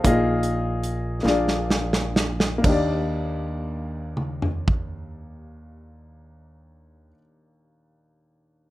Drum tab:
CC |------------|x-----------|------------|
HH |x-x-x-------|------------|------------|
SD |------oooooo|------------|------------|
T2 |------------|------o-----|------------|
FT |------------|-------o----|------------|
BD |o-----------|o-------o---|------------|